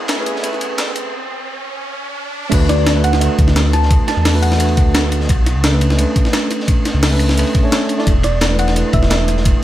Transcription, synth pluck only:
2.69 2.96 D5 medium
3.04 3.39 F#5 medium
3.73 3.94 A5 medium
4.08 4.29 A5 medium
4.42 4.69 F#5 loud
8.24 8.51 D5 loud
8.59 8.94 F#5 medium
8.94 9.15 E5 medium

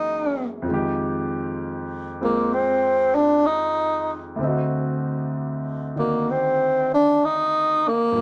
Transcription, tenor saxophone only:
0.00 0.48 D#4 medium
2.24 2.55 A#3 medium
2.53 3.16 C4 medium
3.15 3.48 D4 medium
3.46 4.24 D#4 medium
5.99 6.32 A#3 medium
6.30 6.92 C4 medium
6.94 7.26 D4 medium
7.25 7.89 D#4 medium
7.88 8.21 A#3 medium

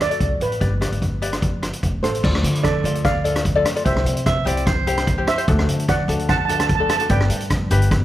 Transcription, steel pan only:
0.02 0.43 D5 medium
0.42 1.80 B4 medium
2.03 2.60 A4 medium
2.03 2.66 C5 medium
2.63 3.02 A4 medium
2.63 3.04 D5 medium
3.05 3.82 D5 medium
3.05 3.88 F5 loud
3.86 4.24 C5 medium
3.86 4.24 E5 medium
5.28 5.85 C5 medium
5.28 5.91 E5 medium
5.89 6.27 D5 medium
5.89 6.27 F#5 medium
6.29 6.37 F#5 medium
6.29 6.37 A5 medium
6.38 6.44 A5 medium
6.45 6.51 A5 medium
6.52 6.59 A5 medium
6.60 6.66 A5 medium
6.67 6.74 A5 medium
6.75 6.81 A5 medium
6.83 6.89 A5 medium
6.90 6.96 A5 medium
6.97 7.05 A5 medium
7.11 7.49 D5 medium
7.11 7.49 G5 medium

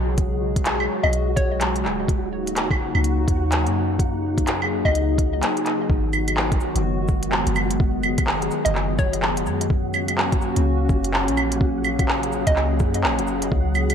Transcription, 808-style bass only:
0.00 0.88 B1 loud
1.04 1.86 B1 medium
1.85 2.93 D#1 medium
2.95 3.26 C#2 loud
3.28 3.67 D#2 medium
3.66 4.83 F#2 medium
4.85 5.42 C#2 medium
5.90 6.60 G#1 loud
6.75 7.45 F#1 loud
7.47 8.50 F#1 loud
8.66 9.48 F#1 loud
9.46 10.54 F#2 loud
10.56 10.88 C#2 loud
10.89 11.30 F#1 medium
11.28 12.45 A#1 medium
12.47 12.82 C#2 medium
12.80 13.05 F#2 loud
13.04 13.20 A#1 medium
13.19 13.50 F#1 medium
13.52 13.95 C#2 loud

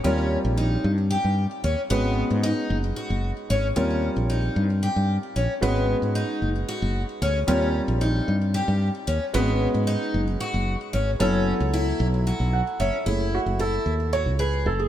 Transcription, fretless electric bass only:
0.05 0.36 D#2 medium
0.45 0.76 A#1 medium
0.84 1.16 G2 medium
1.25 1.45 G2 medium
1.64 1.75 D#2 medium
1.91 2.22 G#1 loud
2.31 2.51 G#2 medium
2.70 2.91 F#1 medium
3.10 3.31 F#1 medium
3.50 3.71 G#1 medium
3.77 4.08 D#2 medium
4.17 4.48 A#1 medium
4.56 4.88 G2 medium
4.96 5.17 G2 medium
5.36 5.46 A#1 medium
5.62 5.94 G#1 loud
6.02 6.23 G#2 medium
6.42 6.63 F#1 medium
6.82 7.03 F#1 medium
7.22 7.43 D2 medium
7.48 7.80 D#2 medium
7.88 8.20 A#1 medium
8.28 8.60 G2 medium
8.68 8.89 G2 medium
9.08 9.18 D#2 medium
9.35 9.66 G#1 loud
9.74 9.95 G#2 medium
10.14 10.35 F#1 medium
10.54 10.75 F#1 medium
10.94 11.15 G#1 medium
11.20 11.52 F#1 medium
11.60 11.92 C#2 medium
12.00 12.31 B1 loud
12.40 12.61 B1 medium
12.80 12.90 F#1 medium
13.06 13.38 F#1 medium
13.46 13.78 F#1 medium
13.86 14.27 D#2 medium
14.26 14.67 C#2 medium
14.66 14.87 F#1 medium

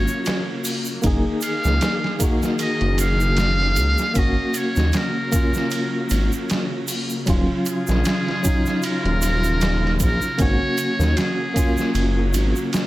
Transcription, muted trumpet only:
0.00 0.61 C#5 medium
1.44 2.17 F5 loud
2.62 2.97 D#5 loud
3.01 4.19 F5 loud
4.18 4.59 D#5 loud
4.57 4.99 C#5 loud
4.97 6.51 A#4 medium
7.70 8.81 G#4 medium
8.85 9.97 A#4 loud
10.03 10.38 A#4 loud
10.41 11.19 C#5 loud
11.18 12.34 G#4 medium

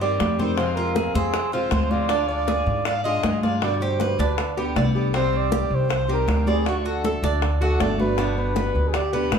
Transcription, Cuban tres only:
0.01 0.38 G4 medium
0.39 0.76 C5 medium
0.77 0.95 F4 medium
0.96 1.15 G#4 medium
1.15 1.52 C4 medium
1.53 1.72 F4 medium
1.72 2.09 C5 medium
2.09 2.47 D4 medium
2.48 2.85 G#4 medium
2.86 3.05 D5 medium
3.05 3.42 G#4 medium
3.43 3.80 D5 medium
3.82 4.00 G4 medium
4.01 4.19 B4 medium
4.19 4.56 D4 medium
4.57 4.76 G4 medium
4.76 5.13 D5 medium
5.14 5.51 C4 medium
5.53 5.89 G4 medium
5.91 6.09 C5 medium
6.09 6.46 G4 medium
6.47 6.84 D5 medium
6.86 7.04 F#4 medium
7.05 7.23 A4 medium
7.24 7.60 D4 medium
7.62 7.80 F#4 medium
7.80 8.17 D5 medium
8.18 8.55 D4 medium
8.56 8.93 B4 medium
8.94 9.13 D5 medium
9.13 9.39 B4 medium

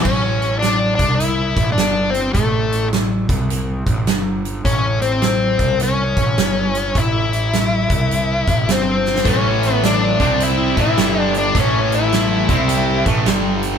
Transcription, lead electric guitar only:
0.03 0.57 C#4 medium
0.59 0.94 D4 medium
0.95 1.18 D4 medium
1.15 1.71 E4 medium
1.72 2.09 D4 medium
2.10 2.33 C4 medium
2.33 2.88 A3 medium
4.65 4.99 C#4 medium
5.02 5.82 C4 medium
5.83 7.00 C#4 medium
6.98 8.74 E4 medium
8.71 9.28 C4 medium
9.29 9.73 C#4 medium
9.73 9.85 B3 medium
9.85 10.43 D4 medium
10.43 10.79 E4 medium
10.81 11.21 E4 medium
11.21 11.32 D4 medium
11.38 11.57 D4 medium
11.60 11.95 C#4 medium
11.95 13.04 E4 medium

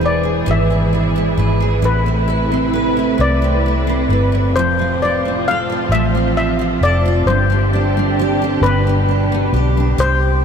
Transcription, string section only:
0.00 1.79 B2 medium
0.00 1.79 E3 medium
0.00 1.79 G#3 medium
0.00 4.49 E4 medium
0.00 1.79 G#4 medium
1.82 4.52 C3 medium
1.82 4.52 E3 medium
1.82 4.52 A3 medium
1.82 4.52 B4 medium
4.53 7.23 A2 medium
4.53 8.57 C3 medium
4.53 7.23 F3 medium
4.53 7.23 C4 medium
4.53 7.23 F4 medium
7.24 9.95 D3 medium
7.24 9.95 G3 medium
7.24 9.95 D4 medium
7.24 9.94 G4 medium
8.62 9.97 B2 medium

